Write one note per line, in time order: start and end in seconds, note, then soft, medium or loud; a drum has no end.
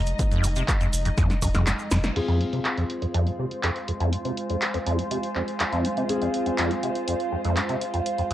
0.00 0.14 F1 medium
0.00 2.12 G#3 medium
0.00 2.12 D#4 medium
0.00 2.14 D#5 medium
0.06 closed hi-hat medium
0.06 shaker soft
0.19 0.23 F2 medium
0.19 kick loud
0.19 closed hi-hat medium
0.19 shaker soft
0.31 0.45 F2 loud
0.31 closed hi-hat soft
0.31 shaker soft
0.44 0.63 F1 loud
0.44 0.48 G#2 medium
0.44 open hi-hat loud
0.44 shaker medium
0.56 0.63 C3 medium
0.56 closed hi-hat medium
0.56 shaker soft
0.68 kick loud
0.68 clap loud
0.68 closed hi-hat medium
0.68 shaker medium
0.81 0.87 F2 medium
0.81 closed hi-hat soft
0.81 shaker soft
0.93 1.12 F1 loud
0.93 open hi-hat medium
0.93 shaker loud
1.05 1.09 F2 medium
1.05 closed hi-hat medium
1.05 shaker soft
1.17 1.31 F2 loud
1.17 kick loud
1.17 snare medium
1.17 closed hi-hat medium
1.17 shaker soft
1.30 1.34 G#2 medium
1.30 snare medium
1.30 closed hi-hat soft
1.30 shaker soft
1.42 1.52 F1 medium
1.42 1.49 F#2 medium
1.42 kick medium
1.42 open hi-hat loud
1.42 shaker medium
1.54 1.73 F1 loud
1.54 1.65 F2 loud
1.54 snare medium
1.54 closed hi-hat medium
1.54 shaker soft
1.66 1.71 F2 medium
1.66 snare medium
1.66 clap loud
1.66 closed hi-hat medium
1.66 shaker medium
1.79 shaker soft
1.91 2.10 F1 loud
1.91 1.98 F2 loud
1.91 snare loud
1.91 open hi-hat medium
1.91 shaker medium
2.03 snare medium
2.03 closed hi-hat medium
2.03 shaker soft
2.16 2.20 F2 medium
2.16 8.34 G#3 medium
2.16 6.06 C4 medium
2.16 8.34 F4 medium
2.16 6.06 F4 medium
2.16 8.34 F4 medium
2.16 6.06 G#4 medium
2.16 8.34 C5 medium
2.16 closed hi-hat medium
2.16 crash medium
2.28 2.42 F2 loud
2.28 closed hi-hat soft
2.41 2.45 G#2 medium
2.41 closed hi-hat medium
2.53 2.60 C3 medium
2.53 closed hi-hat soft
2.65 8.34 C5 medium
2.65 clap loud
2.65 closed hi-hat medium
2.77 2.84 F2 medium
2.77 8.34 F5 medium
2.77 closed hi-hat soft
2.90 closed hi-hat medium
3.02 3.06 F2 medium
3.02 closed hi-hat soft
3.14 3.28 F2 loud
3.14 closed hi-hat medium
3.27 3.31 G#2 medium
3.27 closed hi-hat soft
3.39 3.46 C3 medium
3.51 8.34 G#5 medium
3.51 closed hi-hat soft
3.63 3.70 F2 medium
3.63 clap loud
3.63 closed hi-hat medium
3.76 closed hi-hat soft
3.88 3.92 F2 medium
3.88 closed hi-hat medium
4.00 4.14 F2 loud
4.00 closed hi-hat soft
4.13 4.17 G#2 medium
4.13 closed hi-hat medium
4.25 4.32 C3 medium
4.25 closed hi-hat soft
4.37 closed hi-hat medium
4.49 4.56 F2 medium
4.49 closed hi-hat soft
4.62 clap loud
4.62 closed hi-hat medium
4.74 4.78 F2 medium
4.74 closed hi-hat soft
4.86 5.00 F2 loud
4.86 closed hi-hat medium
4.99 5.03 G#2 medium
4.99 closed hi-hat soft
5.11 5.18 C3 medium
5.11 closed hi-hat medium
5.23 closed hi-hat soft
5.35 5.42 F2 medium
5.35 clap soft
5.48 closed hi-hat soft
5.60 5.64 F2 medium
5.60 clap loud
5.60 closed hi-hat medium
5.72 5.86 F2 loud
5.72 closed hi-hat soft
5.85 5.89 G#2 medium
5.85 closed hi-hat medium
5.97 6.04 C3 medium
5.97 closed hi-hat soft
6.09 8.34 C4 medium
6.09 8.34 F4 medium
6.09 8.34 G#4 medium
6.09 closed hi-hat medium
6.22 6.28 F2 medium
6.22 closed hi-hat soft
6.34 closed hi-hat medium
6.46 6.50 F2 medium
6.46 closed hi-hat soft
6.58 6.72 F2 loud
6.58 clap loud
6.58 closed hi-hat medium
6.71 6.75 G#2 medium
6.71 closed hi-hat soft
6.83 6.90 C3 medium
6.83 closed hi-hat medium
6.95 closed hi-hat soft
7.08 7.15 F2 medium
7.08 closed hi-hat medium
7.20 closed hi-hat soft
7.32 7.36 F2 medium
7.45 7.58 F2 loud
7.45 closed hi-hat soft
7.57 7.61 G#2 medium
7.57 clap loud
7.57 closed hi-hat medium
7.69 7.76 C3 medium
7.69 closed hi-hat soft
7.81 closed hi-hat medium
7.94 8.01 F2 medium
7.94 closed hi-hat soft
8.06 closed hi-hat medium
8.18 8.22 F2 medium
8.18 closed hi-hat soft